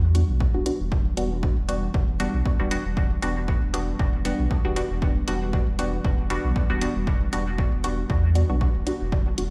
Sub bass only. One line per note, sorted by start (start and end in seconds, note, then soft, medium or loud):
0.00 0.23 E2 loud
0.29 0.47 B1 medium
0.55 0.63 D1 medium
0.80 1.13 E1 medium
1.17 1.51 E1 loud
1.57 1.90 E1 medium
1.94 2.28 E1 loud
2.34 2.43 B1 medium
2.60 2.78 E1 medium
2.85 3.18 E1 loud
3.22 3.56 E1 loud
3.62 3.95 E1 medium
3.99 4.33 E1 medium
4.39 4.48 B1 medium
4.65 4.83 E1 medium
4.90 5.23 E1 loud
5.28 5.62 E1 medium
5.67 6.00 E1 medium
6.05 6.38 E1 medium
6.44 6.53 B1 loud
6.70 6.88 E1 medium
6.96 7.28 E1 loud
7.33 7.67 E1 loud
7.73 8.05 E1 medium
8.10 8.44 E2 loud
8.50 8.68 B1 medium
8.75 8.84 D1 medium
9.01 9.33 E1 medium
9.38 9.50 E1 loud